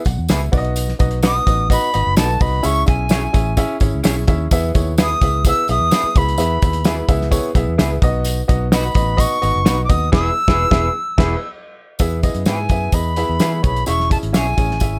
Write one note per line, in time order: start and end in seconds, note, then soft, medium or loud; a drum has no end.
0.05 0.16 B1 medium
0.05 0.29 F#5 medium
0.05 kick medium
0.05 closed hi-hat medium
0.05 tambourine soft
0.18 0.28 E2 medium
0.28 0.49 C#2 medium
0.28 0.40 B3 medium
0.28 0.40 E4 medium
0.28 0.40 G#4 medium
0.28 0.41 B4 medium
0.28 0.74 E5 medium
0.28 snare medium
0.28 closed hi-hat medium
0.28 tambourine loud
0.52 0.92 B1 loud
0.52 0.90 B3 medium
0.52 0.90 D#4 medium
0.52 0.90 F#4 medium
0.52 0.58 D5 medium
0.52 kick loud
0.52 open hi-hat soft
0.52 tambourine soft
0.58 0.93 D#5 loud
0.65 closed hi-hat medium
0.76 closed hi-hat medium
0.76 tambourine loud
0.88 snare soft
0.99 1.39 B1 medium
0.99 1.18 B3 medium
0.99 1.18 D#4 medium
0.99 1.18 F#4 medium
0.99 1.18 D#5 medium
0.99 kick medium
0.99 closed hi-hat medium
0.99 tambourine medium
1.11 closed hi-hat medium
1.23 1.33 B3 medium
1.23 1.41 B3 medium
1.23 1.41 D#4 medium
1.23 1.34 D#4 medium
1.23 1.41 F#4 medium
1.23 1.34 F#4 medium
1.23 1.34 B4 medium
1.23 1.42 D#5 medium
1.23 1.68 D#6 loud
1.23 snare loud
1.23 closed hi-hat medium
1.23 tambourine loud
1.47 1.76 A1 medium
1.47 1.65 B3 medium
1.47 1.65 D#4 medium
1.47 1.65 F#4 medium
1.47 1.65 D#5 medium
1.47 kick medium
1.47 closed hi-hat medium
1.47 tambourine medium
1.70 1.88 B3 medium
1.70 1.88 D#4 medium
1.70 1.88 F#4 medium
1.70 1.88 D#5 loud
1.70 2.15 B5 medium
1.70 kick medium
1.70 closed hi-hat medium
1.70 tambourine medium
1.94 2.04 G#1 medium
1.94 2.12 B3 medium
1.94 2.12 D#4 medium
1.94 2.12 F#4 medium
1.94 2.12 D#5 medium
1.94 closed hi-hat medium
1.94 tambourine soft
2.07 2.16 F#1 medium
2.17 2.37 B1 medium
2.17 2.27 B3 medium
2.17 2.35 B3 medium
2.17 2.27 D#4 medium
2.17 2.35 D#4 medium
2.17 2.28 F#4 medium
2.17 2.36 F#4 medium
2.17 2.35 A4 medium
2.17 2.28 B4 medium
2.17 2.43 A5 medium
2.17 snare loud
2.17 closed hi-hat medium
2.17 tambourine loud
2.40 2.60 C2 medium
2.40 2.59 B3 medium
2.40 2.59 D#4 medium
2.40 2.58 F#4 medium
2.40 2.59 D#5 medium
2.40 2.67 B5 medium
2.40 kick loud
2.40 open hi-hat soft
2.40 tambourine soft
2.63 2.84 C#2 medium
2.63 2.81 C#4 medium
2.63 2.81 E4 medium
2.63 2.82 G#4 medium
2.63 2.82 E5 loud
2.63 2.87 C#6 loud
2.63 closed hi-hat medium
2.63 tambourine loud
2.86 3.26 B1 medium
2.86 3.04 C#4 medium
2.86 3.04 E4 medium
2.86 3.05 G#4 medium
2.86 3.05 E5 medium
2.86 3.77 G#5 medium
2.86 kick loud
2.86 closed hi-hat medium
2.86 tambourine medium
3.09 3.28 C#4 medium
3.09 3.21 C#4 medium
3.09 3.28 E4 medium
3.09 3.21 E4 medium
3.09 3.28 G#4 medium
3.09 3.22 G#4 loud
3.09 3.22 C#5 medium
3.09 3.28 E5 medium
3.09 snare loud
3.09 closed hi-hat medium
3.09 tambourine medium
3.33 3.63 A1 medium
3.33 3.52 C#4 medium
3.33 3.51 E4 medium
3.33 3.52 G#4 medium
3.33 3.52 E5 medium
3.33 kick medium
3.33 closed hi-hat medium
3.33 tambourine medium
3.57 3.75 C#4 loud
3.57 3.75 E4 medium
3.57 3.75 G#4 loud
3.57 3.75 E5 loud
3.57 kick medium
3.57 closed hi-hat medium
3.57 tambourine medium
3.80 3.91 G#1 medium
3.80 3.99 C#4 medium
3.80 3.99 E4 medium
3.80 3.99 G#4 medium
3.80 3.99 C#5 medium
3.80 kick medium
3.80 closed hi-hat medium
3.80 tambourine medium
3.94 4.03 C#2 medium
4.04 4.25 B1 medium
4.04 4.14 C#4 medium
4.04 4.22 C#4 medium
4.04 4.14 E4 medium
4.04 4.22 E4 medium
4.04 4.22 G#4 medium
4.04 4.15 G#4 medium
4.04 4.15 C#5 medium
4.04 4.22 E5 medium
4.04 snare loud
4.04 closed hi-hat medium
4.04 tambourine loud
4.27 4.47 D#2 medium
4.27 4.46 C#4 medium
4.27 4.46 E4 medium
4.27 4.46 G#4 medium
4.27 4.46 E5 medium
4.27 kick medium
4.27 closed hi-hat medium
4.27 tambourine soft
4.51 4.71 E2 medium
4.51 4.70 B3 loud
4.51 4.70 E4 loud
4.51 4.70 G#4 loud
4.51 4.70 E5 loud
4.51 kick loud
4.51 closed hi-hat medium
4.51 tambourine loud
4.74 5.14 D#2 medium
4.74 4.92 B3 medium
4.74 4.92 E4 medium
4.74 4.93 G#4 medium
4.74 4.93 C#5 medium
4.74 kick medium
4.74 closed hi-hat medium
4.74 tambourine medium
4.98 5.16 B3 medium
4.98 5.08 B3 medium
4.98 5.16 E4 medium
4.98 5.08 E4 medium
4.98 5.16 G#4 medium
4.98 5.09 G#4 medium
4.98 5.09 B4 medium
4.98 5.16 E5 medium
4.98 snare loud
4.98 closed hi-hat medium
4.98 tambourine loud
5.03 5.44 D#6 loud
5.21 5.51 C#2 medium
5.21 5.40 B3 medium
5.21 5.40 E4 medium
5.21 5.40 G#4 medium
5.21 5.40 E5 medium
5.21 kick medium
5.21 closed hi-hat medium
5.21 tambourine medium
5.45 5.64 B3 medium
5.45 5.63 E4 medium
5.45 5.63 G#4 medium
5.45 5.64 E5 loud
5.45 5.68 E6 loud
5.45 kick medium
5.45 closed hi-hat medium
5.45 tambourine loud
5.68 5.78 B1 medium
5.68 5.87 B3 medium
5.68 5.87 E4 medium
5.68 5.87 G#4 medium
5.68 5.87 E5 medium
5.68 6.19 D#6 loud
5.68 closed hi-hat medium
5.68 tambourine medium
5.80 5.90 E2 medium
5.91 6.02 B3 medium
5.91 6.10 B3 medium
5.91 6.02 E4 medium
5.91 6.10 E4 medium
5.91 6.02 G#4 medium
5.91 6.10 G#4 medium
5.91 6.03 B4 medium
5.91 6.10 E5 medium
5.91 snare medium
5.91 closed hi-hat medium
5.91 tambourine loud
6.04 muted fingered electric bass stroke soft
6.15 6.35 C#2 medium
6.15 6.34 B3 medium
6.15 6.34 E4 medium
6.15 6.34 G#4 medium
6.15 6.34 E5 medium
6.15 7.10 B5 medium
6.15 kick medium
6.15 closed hi-hat medium
6.15 tambourine soft
6.29 closed hi-hat soft
6.38 6.57 E2 medium
6.38 6.56 B3 medium
6.38 6.56 E4 medium
6.38 6.56 G#4 medium
6.38 6.56 E5 loud
6.38 closed hi-hat medium
6.38 tambourine loud
6.62 7.01 D#2 medium
6.62 6.80 B3 medium
6.62 6.80 E4 medium
6.62 6.80 G#4 medium
6.62 6.80 E5 medium
6.62 kick medium
6.62 closed hi-hat medium
6.62 tambourine medium
6.73 closed hi-hat medium
6.84 6.95 B3 medium
6.84 7.03 B3 medium
6.84 7.03 E4 medium
6.84 6.96 E4 medium
6.84 7.03 G#4 medium
6.84 6.96 G#4 medium
6.84 6.96 B4 medium
6.84 7.03 E5 medium
6.84 snare loud
6.84 closed hi-hat medium
6.84 tambourine medium
7.09 7.38 C#2 medium
7.09 7.27 B3 medium
7.09 7.27 E4 medium
7.09 7.27 G#4 medium
7.09 7.26 E5 loud
7.09 kick loud
7.09 closed hi-hat medium
7.09 tambourine medium
7.21 snare soft
7.31 7.49 B3 loud
7.31 7.49 E4 loud
7.31 7.50 G#4 loud
7.31 7.50 C#5 loud
7.31 kick medium
7.31 closed hi-hat medium
7.31 tambourine loud
7.55 7.65 B1 medium
7.55 7.73 B3 medium
7.55 7.73 E4 medium
7.55 7.73 G#4 medium
7.55 7.73 E5 loud
7.55 kick medium
7.55 closed hi-hat medium
7.55 tambourine medium
7.68 7.77 E2 medium
7.78 7.98 C#2 medium
7.78 7.96 B3 medium
7.78 7.89 B3 medium
7.78 7.97 E4 medium
7.78 7.89 E4 medium
7.78 7.96 G#4 medium
7.78 7.89 G#4 medium
7.78 7.90 B4 medium
7.78 7.96 E5 medium
7.78 snare loud
7.78 closed hi-hat medium
7.78 tambourine loud
8.02 8.41 B1 loud
8.02 8.40 B3 medium
8.02 8.40 D#4 medium
8.02 8.40 F#4 medium
8.02 8.40 D#5 loud
8.02 kick loud
8.02 closed hi-hat medium
8.02 tambourine soft
8.25 closed hi-hat medium
8.25 tambourine loud
8.48 8.88 B1 medium
8.48 8.66 B3 medium
8.48 8.66 D#4 medium
8.48 8.66 F#4 medium
8.48 8.66 D#5 medium
8.48 kick loud
8.48 closed hi-hat medium
8.48 tambourine medium
8.72 8.90 B3 medium
8.72 8.83 B3 medium
8.72 8.90 D#4 medium
8.72 8.83 D#4 medium
8.72 8.90 F#4 medium
8.72 8.83 F#4 medium
8.72 8.83 B4 medium
8.72 8.90 D#5 medium
8.72 9.21 B5 medium
8.72 snare loud
8.72 closed hi-hat medium
8.72 tambourine loud
8.95 9.25 A1 medium
8.95 9.13 B3 medium
8.95 9.13 D#4 medium
8.95 9.13 F#4 medium
8.95 9.13 D#5 medium
8.95 kick medium
8.95 closed hi-hat medium
8.95 tambourine medium
9.17 9.36 B3 medium
9.17 9.36 D#4 medium
9.17 9.36 F#4 medium
9.17 9.36 D#5 loud
9.17 9.84 C#6 medium
9.17 kick medium
9.17 closed hi-hat medium
9.17 tambourine medium
9.42 9.53 G#1 medium
9.42 9.60 B3 medium
9.42 9.60 D#4 medium
9.42 9.60 F#4 medium
9.42 9.60 D#5 medium
9.42 closed hi-hat medium
9.42 tambourine soft
9.56 9.65 F#1 medium
9.65 9.86 B1 medium
9.65 9.76 B3 medium
9.65 9.84 B3 medium
9.65 9.76 D#4 medium
9.65 9.84 D#4 medium
9.65 9.84 F#4 medium
9.65 9.76 F#4 medium
9.65 9.77 B4 medium
9.65 9.84 D#5 medium
9.65 snare loud
9.65 closed hi-hat medium
9.65 tambourine loud
9.84 9.91 D6 medium
9.89 10.09 D#2 medium
9.89 10.07 B3 medium
9.89 10.07 D#4 medium
9.89 10.07 F#4 medium
9.89 10.07 D#5 medium
9.89 10.13 D#6 medium
9.89 kick loud
9.89 closed hi-hat medium
9.89 tambourine soft
10.12 10.29 E1 loud
10.12 10.28 B3 medium
10.12 10.28 B3 loud
10.12 10.28 E4 loud
10.12 10.29 E4 medium
10.12 10.28 G#4 loud
10.12 10.29 G#4 medium
10.12 10.29 B4 medium
10.12 10.28 E5 medium
10.12 11.50 E6 loud
10.12 kick loud
10.12 snare loud
10.12 crash medium
10.48 10.64 E1 loud
10.48 10.64 B3 medium
10.48 10.64 B3 loud
10.48 10.64 E4 medium
10.48 10.64 E4 loud
10.48 10.64 G#4 medium
10.48 10.65 G#4 loud
10.48 10.64 B4 medium
10.48 10.65 B4 loud
10.48 kick loud
10.48 snare loud
10.71 10.87 E1 loud
10.71 10.87 B3 medium
10.71 10.87 E4 medium
10.71 10.88 E4 medium
10.71 10.87 G#4 medium
10.71 10.88 G#4 medium
10.71 10.88 B4 medium
10.71 10.87 E5 medium
10.71 kick loud
10.71 snare loud
11.18 11.34 E1 loud
11.18 11.34 B3 medium
11.18 11.34 E4 loud
11.18 11.34 E4 medium
11.18 11.34 G#4 loud
11.18 11.35 G#4 medium
11.18 11.35 B4 medium
11.18 11.34 E5 medium
11.18 kick loud
11.18 snare medium
11.18 crash medium
11.99 12.29 E2 medium
11.99 12.18 B3 loud
11.99 12.18 E4 medium
11.99 12.18 G#4 loud
11.99 12.18 E5 loud
11.99 kick loud
11.99 closed hi-hat medium
11.99 tambourine loud
12.23 12.41 B3 medium
12.23 12.41 E4 medium
12.23 12.42 G#4 medium
12.23 12.42 D#5 medium
12.23 kick medium
12.23 closed hi-hat medium
12.23 tambourine medium
12.35 12.45 F#2 medium
12.35 closed hi-hat medium
12.46 12.66 G#2 medium
12.46 12.57 B3 medium
12.46 12.65 B3 medium
12.46 12.57 E4 medium
12.46 12.65 E4 medium
12.46 12.58 G#4 medium
12.46 12.65 G#4 medium
12.46 12.58 B4 medium
12.46 12.65 E5 medium
12.46 12.96 G#5 medium
12.46 snare loud
12.46 closed hi-hat medium
12.46 tambourine medium
12.69 12.90 F#2 medium
12.69 12.89 B3 medium
12.69 12.89 E4 medium
12.69 12.89 G#4 medium
12.69 12.89 E5 medium
12.69 kick medium
12.69 closed hi-hat medium
12.69 tambourine soft
12.92 13.22 E2 medium
12.92 13.12 B3 medium
12.92 13.12 E4 medium
12.92 13.12 G#4 medium
12.92 13.12 D#5 medium
12.92 13.64 B5 medium
12.92 kick medium
12.92 closed hi-hat medium
12.92 tambourine medium
13.16 13.35 B3 medium
13.16 13.35 E4 medium
13.16 13.35 G#4 medium
13.16 13.35 E5 loud
13.16 closed hi-hat medium
13.16 tambourine medium
13.29 13.39 E2 medium
13.40 13.61 E3 medium
13.40 13.58 B3 medium
13.40 13.51 B3 medium
13.40 13.58 E4 medium
13.40 13.51 E4 medium
13.40 13.59 G#4 medium
13.40 13.52 G#4 medium
13.40 13.52 B4 medium
13.40 13.59 E5 loud
13.40 snare medium
13.40 closed hi-hat medium
13.40 tambourine medium
13.62 13.84 B1 medium
13.62 13.81 B3 medium
13.62 13.81 E4 medium
13.62 13.81 G#4 medium
13.62 13.82 C#5 medium
13.62 13.87 B5 medium
13.62 kick medium
13.62 closed hi-hat medium
13.62 tambourine soft
13.76 closed hi-hat soft
13.86 14.17 E1 loud
13.86 14.05 C#4 medium
13.86 14.05 E4 medium
13.86 14.05 G#4 medium
13.86 14.05 E5 loud
13.86 14.10 C#6 loud
13.86 closed hi-hat medium
13.86 tambourine medium
14.00 snare soft
14.10 14.29 C#4 medium
14.10 14.29 E4 medium
14.10 14.29 G#4 medium
14.10 14.29 E5 medium
14.10 14.18 A5 medium
14.10 kick medium
14.10 closed hi-hat medium
14.10 tambourine medium
14.23 14.33 G#1 medium
14.23 closed hi-hat medium
14.32 14.55 B1 loud
14.32 14.52 C#4 medium
14.32 14.45 C#4 medium
14.32 14.52 E4 medium
14.32 14.45 E4 medium
14.32 14.52 G#4 medium
14.32 14.45 G#4 medium
14.32 14.46 C#5 medium
14.32 14.52 E5 medium
14.32 14.99 G#5 medium
14.32 snare loud
14.32 closed hi-hat medium
14.32 tambourine loud
14.57 14.77 A1 medium
14.57 14.76 C#4 medium
14.57 14.76 E4 medium
14.57 14.76 G#4 medium
14.57 14.76 C#5 medium
14.57 kick medium
14.57 closed hi-hat medium
14.57 tambourine medium
14.71 snare soft
14.80 14.99 G#1 loud
14.80 14.99 C#4 medium
14.80 14.99 E4 medium
14.80 14.99 G#4 medium
14.80 14.99 E5 medium
14.80 kick medium
14.80 closed hi-hat medium
14.80 tambourine medium